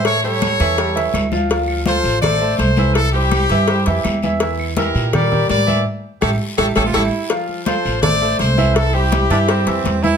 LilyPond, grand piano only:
\new Staff \with { instrumentName = "Grand piano" } { \time 4/4 \key d \minor \tempo 4 = 165 <e e' e''>8 <g g' a'>4 <e e' e''>8 <g g' a'>8 <e e' e''>4 <f f' f''>8 | <f f' f''>4 <f f' f''>4 <a a' c''>8 <a a' c''>4 <e e' e''>8~ | <e e' e''>8 <g g' c''>4 <e e' e''>8 <g g' c''>8 <e e' e''>4 <e e' e''>8 | <e e' e''>4 <e e' e''>4 <g g' bes'>8 <g g' bes'>4 <e e' e''>8 |
r4 <e' g' a'>8 r8 <e' g' a'>8 <e' g' a'>8 <e' g' a'>8 r8 | <f f' f''>4 <f f' f''>4 <a a' c''>8 <a a' c''>4 <e e' e''>8~ | <e e' e''>8 <g g' c''>4 <e e' e''>8 <g g' c''>8 <e e' e''>4 <e e' e''>8 | }